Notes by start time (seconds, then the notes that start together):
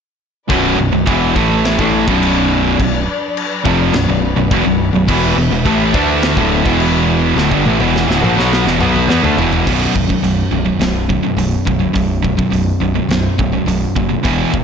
0.49 B0 B1 F#2 B2 F#3 D4 B4 D5, kick, china
0.78 B0 B1 F#2
0.92 B0 B1 F#2
1.06 E1 E2 B2 E3, kick, china
1.35 A1 A2 E3 A3, kick
1.65 snare, china
1.78 A1 A2 E3 A3, kick
2.08 B0 B1 F#2 B2, kick
2.23 china
2.79 B0 B1 F#2, kick, china
3.37 china
3.65 F1 F2 C3 F3, kick
3.93 B0 B1 F#2, snare, china
4.08 B0 B1 F#2
4.36 B0 B1 F#2
4.51 E1 E2 B2, kick, china
4.65 B0 B1 F#2
4.93 B0 B1 F#2
5.06 E1 E2 B2 E3 B3 E5, kick, crash, china
5.36 E1 E2 B2
5.51 E1 E2 B2
5.65 A1 A2 E3 A3, kick, china
5.94 D2 D3 A3 D4, kick
6.22 snare, china
6.37 D1 D2 A2 D3, kick
6.65 E1 E2 B2 E3, kick
6.80 china
7.36 D1 D2 A2 F#5, snare
7.51 G1 G2 D3, kick
7.66 A1 A2 E3, high tom
7.80 E1 E2 B2 E3, high tom
7.96 snare
8.08 D1 D2 A2, snare
8.22 A#1 A#2 F3, mid tom
8.36 B1 B2 F#3 B3, snare
8.53 snare
8.65 E1 E2 B2, snare
8.80 B1 B2 F#3 B3, mid tom
8.96 mid tom
9.08 E2 E3 B3, snare
9.22 D2 D3 A3, floor tom
9.36 E1 E2 B2 E3, floor tom
9.53 floor tom
9.66 B0 B1 F#2 B2, kick, crash
9.94 B0 B1 F#2, kick
10.08 B1 F#2, kick
10.22 B0 B1 F#2, open hi-hat
10.51 B0 B1 F#2
10.65 B1 F#2
10.79 B0 B1 F#2, snare, open hi-hat
11.09 B1 F#2, kick
11.22 B1 F#2
11.37 B0 B1 F#2, open hi-hat
11.65 B0 B1 F#2, kick
11.79 B1 F#2
11.93 B0 B1 F#2, kick, open hi-hat
12.23 B1 F#2, kick
12.37 B1 F#2, kick
12.50 B0 B1 F#2, open hi-hat
12.80 B0 B1 F#2
12.94 B1 F#2
13.09 B0 B1 F#2, snare, open hi-hat
13.38 B0 B1 F#2, kick
13.52 B1 F#2
13.66 B0 B1 F#2, open hi-hat
13.96 F#1 B1 F#2, kick
14.10 B1 F#2
14.24 E1 E2 B2 E3, kick, open hi-hat
14.53 E1 E2 B2, kick